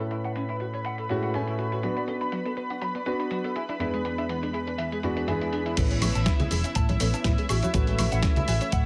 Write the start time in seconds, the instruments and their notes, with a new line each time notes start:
Already playing: grand piano A2 A3 C#4 A4, analog synth pad B4 B5
0.01 clean electric guitar A4
0.11 clean electric guitar E4, closed hi-hat
0.24 clean electric guitar F#5, closed hi-hat
0.36 clean electric guitar C#4, closed hi-hat
0.49 clean electric guitar E4, closed hi-hat
0.60 clean electric guitar F#4, closed hi-hat
0.74 clean electric guitar C#5, closed hi-hat
0.85 clean electric guitar F#5, closed hi-hat
0.98 clean electric guitar A4, closed hi-hat
1.09 grand piano A2 G#3 A3 C#4 F#4, clean electric guitar F#4, closed hi-hat
1.23 clean electric guitar F#5, closed hi-hat
1.34 grand piano A2 A3 C#4 G#5, clean electric guitar C#4, closed hi-hat
1.47 clean electric guitar E4, closed hi-hat
1.59 clean electric guitar F#4, closed hi-hat
1.72 clean electric guitar F#4, closed hi-hat
1.82 synth arpeggio sound F#3, grand piano B3 D4 F#4, clean electric guitar B4, closed hi-hat
1.97 synth arpeggio sound B3, clean electric guitar D5, closed hi-hat
2.08 synth arpeggio sound C#4, clean electric guitar A4, closed hi-hat
2.21 synth arpeggio sound D4, clean electric guitar B5, closed hi-hat
2.32 synth arpeggio sound F#3, clean electric guitar F#4, closed hi-hat
2.46 synth arpeggio sound B3, clean electric guitar A4, closed hi-hat
2.57 clean electric guitar B4, synth arpeggio sound B4, closed hi-hat
2.70 synth arpeggio sound D4, clean electric guitar F#5, closed hi-hat
2.82 synth arpeggio sound F#3, clean electric guitar B5, closed hi-hat
2.95 synth arpeggio sound B3, clean electric guitar D5, closed hi-hat
3.06 grand piano B3 D4 F#4, synth arpeggio sound C#4, clean electric guitar B4, closed hi-hat
3.20 synth arpeggio sound D4, clean electric guitar B5, closed hi-hat
3.31 synth arpeggio sound F#3, clean electric guitar F#4, closed hi-hat
3.44 synth arpeggio sound B3, clean electric guitar A4, closed hi-hat
3.56 clean electric guitar E4, synth arpeggio sound G#4, closed hi-hat
3.69 synth arpeggio sound D4, clean electric guitar E4, closed hi-hat
3.79 grand piano E2 G#3 B3 D4 B4, synth arpeggio sound E3, clean electric guitar E4, closed hi-hat
3.94 synth arpeggio sound G#3, clean electric guitar G#4, closed hi-hat
4.05 synth arpeggio sound B3, clean electric guitar D4, closed hi-hat
4.18 synth arpeggio sound D4, clean electric guitar E5, closed hi-hat
4.29 synth arpeggio sound E3, clean electric guitar B3, closed hi-hat
4.43 synth arpeggio sound G#3, clean electric guitar D4, closed hi-hat
4.53 clean electric guitar E4, synth arpeggio sound G#4, closed hi-hat
4.67 synth arpeggio sound D4, clean electric guitar B4, closed hi-hat
4.78 synth arpeggio sound E3, clean electric guitar E5, closed hi-hat
4.92 synth arpeggio sound G#3, clean electric guitar G#4, closed hi-hat
5.03 grand piano E2 G#3 B3 D4 F#4, synth arpeggio sound B3, clean electric guitar E4, closed hi-hat
5.17 synth arpeggio sound D4, clean electric guitar B4, closed hi-hat
5.28 grand piano E2 G#3 B3 D4 G#4, synth arpeggio sound E3, clean electric guitar E5, closed hi-hat
5.41 synth arpeggio sound G#3, clean electric guitar E4, closed hi-hat
5.53 clean electric guitar D4, synth arpeggio sound G#4, closed hi-hat
5.66 synth arpeggio sound D4, clean electric guitar E4, closed hi-hat
5.76 fingered electric bass A1, synth arpeggio sound E3, grand piano B3 C#4 E4, analog synth pad E4 E5, clean electric guitar A4, kick, closed hi-hat, crash, cabasa
5.91 synth arpeggio sound G#3, clean electric guitar C#5, closed hi-hat
6.02 synth arpeggio sound A3, clean electric guitar G#4, open hi-hat, high conga, cabasa, high woodblock
6.15 fingered electric bass A1, synth arpeggio sound C#4, clean electric guitar A5, closed hi-hat, cabasa
6.26 synth arpeggio sound E3, clean electric guitar E4, kick, snare, closed hi-hat, cabasa
6.40 synth arpeggio sound G#3, clean electric guitar G#4, closed hi-hat, low conga
6.51 fingered electric bass E1, synth arpeggio sound G#4, clean electric guitar A4, open hi-hat, high conga, cabasa
6.64 synth arpeggio sound C#4, clean electric guitar E5, closed hi-hat, cabasa
6.75 fingered electric bass A2, synth arpeggio sound E3, clean electric guitar A5, kick, closed hi-hat, cabasa
6.89 fingered electric bass A1, synth arpeggio sound G#3, clean electric guitar C#5, closed hi-hat, high conga
7.00 fingered electric bass A1, synth arpeggio sound A3, grand piano B3 C#4 E4, clean electric guitar A4, open hi-hat, cabasa
7.14 synth arpeggio sound C#4, clean electric guitar A5, closed hi-hat, cabasa
7.24 fingered electric bass A2, synth arpeggio sound E3, clean electric guitar E4, kick, snare, closed hi-hat, high conga, cabasa
7.38 synth arpeggio sound G#3, clean electric guitar G#4, closed hi-hat
7.49 fingered electric bass A1, clean electric guitar F#4, synth arpeggio sound G#4, open hi-hat, cabasa, high woodblock
7.63 synth arpeggio sound C#4, clean electric guitar F#4, closed hi-hat, high conga, cabasa
7.73 fingered electric bass A1, synth arpeggio sound F#3, grand piano A3 C#4 F#4 B4, clean electric guitar F#4, kick, closed hi-hat, cabasa
7.87 synth arpeggio sound G#3, clean electric guitar A4, closed hi-hat
7.99 synth arpeggio sound A3, clean electric guitar E4, open hi-hat, high conga, cabasa, high woodblock
8.12 fingered electric bass A1, synth arpeggio sound C#4, clean electric guitar F#5, closed hi-hat, cabasa
8.23 synth arpeggio sound F#3, clean electric guitar C#4, kick, snare, closed hi-hat, cabasa
8.36 synth arpeggio sound G#3, clean electric guitar E4, closed hi-hat, low conga
8.48 fingered electric bass A1, clean electric guitar F#4, synth arpeggio sound G#4, open hi-hat, high conga, cabasa
8.61 synth arpeggio sound C#4, clean electric guitar C#5, closed hi-hat, cabasa
8.72 fingered electric bass A2, synth arpeggio sound F#3, clean electric guitar F#5, kick, closed hi-hat, cabasa